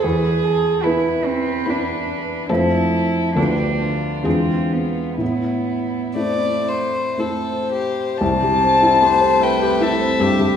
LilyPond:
<<
  \new Staff \with { instrumentName = "Violin" } { \time 3/4 \key a \minor \tempo 4 = 69 b'8 a'8 b'2 | a'4 g'8 f'4. | e'2 c''4 | \key c \major a''4. g''8 e''4 | }
  \new Staff \with { instrumentName = "Violin" } { \time 3/4 \key a \minor r4 b'4 b'4 | a'4 a'4 gis'4 | r4 d''8 c''8 a'8 g'8 | \key c \major r4 c''8 b'8 a'8 g'8 | }
  \new Staff \with { instrumentName = "Cello" } { \time 3/4 \key a \minor gis'4 e'8 c'8 d'4 | e'4 d'4 c'8 b8 | b4 a4 r4 | \key c \major c'4 a2 | }
  \new Staff \with { instrumentName = "Grand piano" } { \time 3/4 \key a \minor e,4 <b e' b'>4 <b e' b'>4 | <f, a c' f'>4 <d, a b f'>4 <e, gis d' f'>4 | a,4 <a c' e'>4 <a c' e'>4 | \key c \major c,16 g16 c'16 e'16 g'16 c''16 e''16 g'16 e'16 c'16 g,16 g16 | }
>>